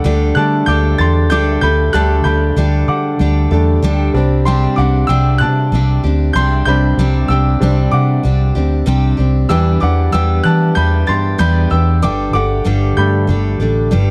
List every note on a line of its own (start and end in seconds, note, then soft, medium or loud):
0.00 0.32 G3 medium
0.00 0.33 A3 medium
0.00 0.33 D4 medium
0.00 0.33 F#5 medium
0.00 0.38 D6 medium
0.04 0.31 D2 loud
0.04 1.29 D3 loud
0.04 0.67 G3 loud
0.04 0.68 D4 loud
0.04 0.69 G4 loud
0.04 0.69 A4 loud
0.35 0.62 D3 loud
0.35 0.65 G3 medium
0.35 0.65 A3 soft
0.35 0.65 D4 medium
0.35 0.66 A5 medium
0.35 0.65 F#6 medium
0.66 0.94 D2 loud
0.66 0.99 G3 medium
0.66 1.00 D4 medium
0.66 1.00 G4 medium
0.66 0.97 D6 medium
0.66 1.00 G6 loud
0.70 0.98 A4 medium
0.98 1.30 E2 medium
0.98 1.30 D4 medium
0.98 1.31 G4 medium
0.98 1.31 A4 medium
0.98 1.30 C6 medium
0.98 1.32 A6 loud
1.30 1.56 D2 loud
1.30 1.62 D3 loud
1.30 1.63 G3 loud
1.30 1.63 D4 loud
1.30 1.62 G4 loud
1.30 1.60 A4 loud
1.30 1.61 D6 medium
1.30 1.60 G6 loud
1.61 1.88 D2 loud
1.61 1.94 D4 soft
1.61 1.94 G4 medium
1.61 1.93 A4 medium
1.61 1.92 B5 medium
1.61 1.94 G6 loud
1.93 2.20 D2 loud
1.93 2.25 D3 loud
1.93 2.35 G3 medium
1.93 2.26 G3 medium
1.93 2.36 A3 medium
1.93 2.36 D4 medium
1.93 2.26 D4 loud
1.93 2.25 G4 loud
1.93 2.24 A4 loud
1.93 2.24 A5 medium
1.93 2.26 F#6 loud
2.24 2.51 D2 loud
2.24 2.57 G4 medium
2.24 2.57 A4 medium
2.24 2.84 B5 medium
2.24 2.90 G6 loud
2.28 2.56 D4 medium
2.56 2.83 D2 medium
2.56 3.82 D3 medium
2.56 3.19 G3 medium
2.56 3.20 D4 loud
2.56 3.21 G4 medium
2.56 3.21 A4 loud
2.88 3.14 D3 medium
2.88 4.11 F#5 medium
2.88 4.10 D6 medium
3.19 3.46 D2 loud
3.19 3.51 G3 medium
3.19 3.52 D4 medium
3.19 3.52 G4 medium
3.19 3.50 A4 medium
3.51 3.77 E2 medium
3.51 3.80 G3 soft
3.51 3.80 A3 soft
3.51 3.80 D4 medium
3.51 3.83 D4 medium
3.51 3.83 G4 medium
3.51 3.83 A4 medium
3.82 4.09 D2 loud
3.82 4.14 D3 medium
3.82 4.15 G3 loud
3.82 4.15 D4 loud
3.82 4.13 G4 loud
3.82 4.14 A4 loud
4.14 4.66 C2 loud
4.14 4.56 G3 medium
4.14 4.56 C4 medium
4.14 4.56 D4 medium
4.14 4.47 D4 medium
4.14 4.46 G4 medium
4.18 4.46 C4 medium
4.45 4.78 C3 loud
4.45 4.78 G3 medium
4.45 4.78 C4 loud
4.45 4.78 D4 loud
4.45 4.76 G4 loud
4.45 4.76 G5 medium
4.45 4.75 C6 medium
4.76 5.04 C2 loud
4.76 5.09 D4 medium
4.76 5.09 G4 medium
4.76 4.85 F#5 medium
4.76 4.83 D6 medium
4.81 5.09 C4 medium
5.07 5.43 C2 loud
5.07 5.72 C3 medium
5.07 5.72 G3 medium
5.07 5.72 C4 medium
5.07 5.74 D4 medium
5.07 5.75 G4 loud
5.07 5.38 G5 medium
5.07 5.37 E6 loud
5.38 5.73 C3 medium
5.38 6.00 A5 medium
5.38 5.99 F#6 loud
5.72 5.98 C2 loud
5.72 6.04 G3 medium
5.72 6.04 C4 medium
5.72 6.04 D4 medium
5.72 6.02 G4 medium
6.04 6.30 D2 loud
6.04 6.35 C4 medium
6.04 6.36 D4 medium
6.04 6.35 G4 medium
6.33 6.61 C2 loud
6.33 6.67 C3 loud
6.33 6.67 G3 loud
6.33 6.67 C4 medium
6.33 6.67 D4 loud
6.33 6.66 G4 loud
6.33 6.65 C6 medium
6.33 6.64 G6 loud
6.65 6.92 C2 loud
6.65 7.59 G3 medium
6.65 7.59 C4 medium
6.65 7.59 D4 medium
6.65 6.99 D4 medium
6.65 6.98 G4 medium
6.65 7.26 B5 medium
6.65 7.31 G6 loud
6.70 6.98 C4 medium
6.97 7.24 C2 loud
6.97 7.30 C3 medium
6.97 7.30 G3 medium
6.97 7.30 C4 loud
6.97 7.30 D4 loud
6.97 7.29 G4 loud
7.28 7.55 C2 loud
7.28 7.62 D4 medium
7.28 7.61 G4 medium
7.28 7.89 G5 medium
7.28 7.94 E6 loud
7.33 7.61 C4 medium
7.60 7.87 C2 loud
7.60 8.24 C3 medium
7.60 7.89 G3 medium
7.60 8.23 G3 medium
7.60 7.89 C4 soft
7.60 8.23 C4 loud
7.60 7.89 D4 medium
7.60 8.25 D4 loud
7.60 8.26 G4 loud
7.91 8.18 C3 medium
7.91 9.15 F#5 medium
7.91 9.14 D6 loud
8.23 8.50 C2 loud
8.23 8.55 G3 medium
8.23 8.56 C4 medium
8.23 8.55 D4 medium
8.23 8.54 G4 medium
8.55 8.82 D2 loud
8.55 8.86 C4 medium
8.55 8.86 D4 medium
8.55 8.87 G4 medium
8.86 9.13 C2 loud
8.86 9.18 C3 loud
8.86 9.18 G3 loud
8.86 9.19 C4 loud
8.86 9.18 D4 medium
8.86 9.16 G4 loud
9.17 9.44 C2 loud
9.17 9.50 C4 medium
9.17 9.50 D4 medium
9.17 9.49 G4 medium
9.49 9.76 E2 loud
9.49 9.81 E3 loud
9.49 11.98 E3 medium
9.49 11.98 G3 medium
9.49 9.82 G3 loud
9.49 9.82 B3 loud
9.49 11.98 D4 medium
9.49 9.81 D4 loud
9.49 9.79 G4 loud
9.49 9.58 G5 medium
9.49 9.56 E6 loud
9.80 10.08 E2 loud
9.80 10.12 B3 medium
9.80 10.13 D4 medium
9.80 10.12 G4 medium
9.80 10.12 F#5 medium
9.80 10.14 D6 medium
10.12 10.39 E2 loud
10.12 10.76 E3 medium
10.12 10.75 G3 medium
10.12 10.76 B3 medium
10.12 10.77 D4 medium
10.12 10.78 G4 loud
10.12 10.43 G5 medium
10.12 10.45 E6 loud
10.44 10.71 E3 medium
10.44 10.74 A5 medium
10.44 10.77 F#6 loud
10.75 11.02 E2 loud
10.75 11.07 G3 medium
10.75 11.08 B3 medium
10.75 11.07 D4 medium
10.75 11.05 G4 medium
10.75 11.06 B5 medium
10.75 11.08 G6 loud
11.07 11.34 G2 loud
11.07 11.38 B3 medium
11.07 11.39 D4 medium
11.07 11.39 G4 medium
11.07 11.16 C6 medium
11.07 11.14 A6 loud
11.38 11.65 E2 loud
11.38 11.70 E3 loud
11.38 11.71 G3 loud
11.38 11.71 B3 loud
11.38 11.71 D4 loud
11.38 11.69 G4 loud
11.38 11.69 B5 medium
11.38 11.72 G6 loud
11.70 12.04 E2 loud
11.70 12.03 B3 medium
11.70 12.02 D4 medium
11.70 12.02 G4 medium
11.70 12.01 G5 medium
11.70 12.03 E6 medium
12.02 12.28 G1 loud
12.02 12.34 G2 loud
12.02 12.34 D3 loud
12.02 12.34 G3 loud
12.02 12.34 D4 loud
12.02 12.34 G4 loud
12.02 12.32 A4 loud
12.02 12.33 G5 medium
12.02 12.32 D6 loud
12.33 12.60 G1 loud
12.33 12.64 G3 soft
12.33 12.65 D4 medium
12.33 12.65 G4 medium
12.33 12.65 A4 medium
12.33 12.93 F#5 medium
12.33 12.98 D6 loud
12.64 12.91 G1 medium
12.64 13.28 G2 medium
12.64 13.91 D3 loud
12.64 13.27 G3 medium
12.64 13.28 D4 medium
12.64 13.29 G4 medium
12.64 13.30 A4 loud
12.97 13.30 G2 medium
12.97 14.11 G3 medium
12.97 14.11 A3 medium
12.97 14.11 D4 medium
12.97 14.11 B5 medium
12.97 14.11 G6 loud
13.27 13.54 G1 loud
13.27 13.59 G3 medium
13.27 13.60 D4 medium
13.27 13.59 G4 medium
13.27 13.58 A4 medium
13.60 13.93 A1 medium
13.60 13.91 G3 medium
13.60 13.91 D4 medium
13.60 13.91 G4 medium
13.60 13.91 A4 medium
13.91 14.11 G1 loud
13.91 14.11 G2 loud
13.91 14.11 D3 medium
13.91 14.11 G3 medium
13.91 14.11 D4 medium
13.91 14.11 G4 loud
13.91 14.11 A4 loud